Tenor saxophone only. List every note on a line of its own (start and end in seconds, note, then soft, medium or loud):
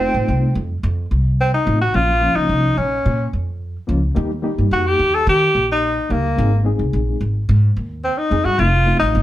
0.00 0.70 C4 loud
1.41 1.53 C4 medium
1.54 1.79 D#4 medium
1.81 1.96 F#4 medium
1.95 2.38 F4 loud
2.36 2.79 D#4 medium
2.77 3.33 C#4 medium
4.73 4.89 F#4 medium
4.87 5.16 G4 medium
5.15 5.28 A4 loud
5.29 5.67 G4 loud
5.72 6.13 D#4 medium
6.12 6.66 A#3 medium
8.04 8.20 C4 medium
8.18 8.46 D#4 medium
8.45 8.61 F#4 loud
8.59 8.99 F4 loud
8.99 9.22 D#4 medium